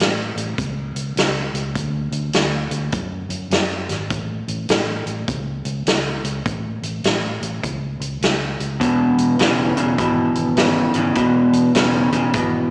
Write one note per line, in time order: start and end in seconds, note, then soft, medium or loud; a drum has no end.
0.00 0.34 A1 medium
0.00 snare loud
0.00 closed hi-hat medium
0.36 0.56 A1 medium
0.36 closed hi-hat medium
0.58 0.93 C#2 medium
0.58 kick loud
0.58 closed hi-hat medium
0.95 1.15 C#2 medium
0.95 closed hi-hat medium
1.16 1.51 C#2 medium
1.16 snare loud
1.16 closed hi-hat medium
1.54 1.73 C#2 medium
1.54 closed hi-hat medium
1.75 2.10 D2 medium
1.75 kick loud
1.75 closed hi-hat medium
2.12 2.32 D2 medium
2.12 closed hi-hat medium
2.33 2.68 D2 medium
2.33 snare loud
2.33 closed hi-hat medium
2.71 2.91 D2 medium
2.71 closed hi-hat medium
2.92 3.28 F#2 medium
2.92 kick loud
2.92 closed hi-hat medium
3.29 3.49 F#2 loud
3.29 closed hi-hat medium
3.51 3.86 F#2 medium
3.51 snare loud
3.51 closed hi-hat medium
3.89 4.09 G#1 medium
3.89 snare soft
3.89 closed hi-hat medium
4.10 4.45 A1 medium
4.10 kick loud
4.10 closed hi-hat medium
4.48 4.67 A1 medium
4.48 closed hi-hat medium
4.69 5.04 A1 medium
4.69 snare loud
4.69 closed hi-hat medium
5.06 5.26 A1 medium
5.06 closed hi-hat medium
5.28 5.63 C#2 medium
5.28 kick loud
5.28 closed hi-hat medium
5.65 5.85 C#2 medium
5.65 closed hi-hat medium
5.86 6.21 C#2 medium
5.86 snare loud
5.86 closed hi-hat medium
6.24 6.44 C#2 medium
6.24 closed hi-hat medium
6.46 6.81 A1 medium
6.46 kick loud
6.46 closed hi-hat medium
6.82 7.02 A1 medium
6.82 closed hi-hat medium
7.04 7.39 A1 medium
7.04 snare loud
7.04 closed hi-hat medium
7.42 7.61 A1 medium
7.42 closed hi-hat medium
7.63 7.98 C#2 medium
7.63 kick loud
7.63 closed hi-hat medium
8.00 8.20 C#2 medium
8.00 closed hi-hat medium
8.21 8.56 C#2 medium
8.21 snare loud
8.21 closed hi-hat medium
8.60 8.79 C#2 medium
8.60 closed hi-hat medium
8.80 9.16 E1 medium
8.80 9.35 E2 medium
8.80 9.35 B2 loud
8.80 kick loud
8.80 closed hi-hat medium
9.18 9.38 E1 medium
9.18 closed hi-hat medium
9.39 9.74 E1 medium
9.39 9.73 E2 medium
9.39 9.74 C#3 loud
9.39 snare loud
9.39 closed hi-hat medium
9.77 9.97 E1 medium
9.77 9.96 E2 medium
9.77 9.96 C#3 medium
9.77 closed hi-hat medium
9.98 10.34 G#1 medium
9.98 10.53 E2 medium
9.98 10.53 B2 medium
9.98 kick loud
9.98 closed hi-hat medium
10.35 10.55 G#1 medium
10.35 closed hi-hat medium
10.56 10.92 G#1 medium
10.56 10.91 E2 medium
10.56 10.91 C#3 medium
10.56 snare loud
10.56 closed hi-hat medium
10.94 11.14 G#1 medium
10.94 11.14 E2 medium
10.94 11.15 C#3 medium
10.94 closed hi-hat medium
11.15 11.51 E1 loud
11.15 11.70 E2 medium
11.15 11.71 B2 medium
11.15 kick loud
11.15 closed hi-hat medium
11.53 11.73 E1 medium
11.53 closed hi-hat medium
11.75 12.10 E1 medium
11.75 12.09 E2 medium
11.75 12.09 C#3 medium
11.75 snare loud
11.75 closed hi-hat medium
12.12 12.32 E1 medium
12.12 12.32 E2 medium
12.12 12.32 C#3 medium
12.12 closed hi-hat medium
12.33 12.69 G#1 medium
12.33 12.71 E2 medium
12.33 12.71 B2 medium
12.33 kick loud
12.33 closed hi-hat medium